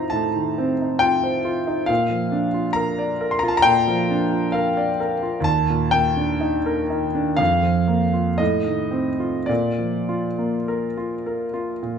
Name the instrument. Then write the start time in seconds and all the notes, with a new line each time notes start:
grand piano
Already playing: A2 D#3 C4 D#4 F4 C5 A#5 C6
0.10 A2 A5
0.35 D#3
0.58 C4
0.81 D#4
0.99 F4 G5
1.24 C5
1.45 F4
1.67 D#4
1.86 A#2 F5
2.10 F3
2.32 D4
2.54 F4
2.73 A#4 A#5
2.98 D5
3.21 A#4
3.31 C6
3.39 A#5
3.43 F4
3.48 A5
3.57 A#5
3.62 A#2 G5
3.88 F3
4.11 D4
4.33 F4
4.52 A#4 F5
4.77 D5
5.00 A#4
5.23 F4
5.40 D#2 A5
5.70 A#2
5.91 A#3 G5
6.17 D4
6.41 D#4
6.66 A#4
6.90 D#4
7.15 D4
7.37 F2 F5
7.63 F3
7.88 A#3
8.14 F4
8.38 A2 D#5
8.66 D#3
8.91 C4
9.20 F4
9.46 A#2 D5
9.78 F3
10.09 F4
10.38 A#3
10.68 A#4
10.97 F4
11.26 A#4
11.54 F4
11.83 A#2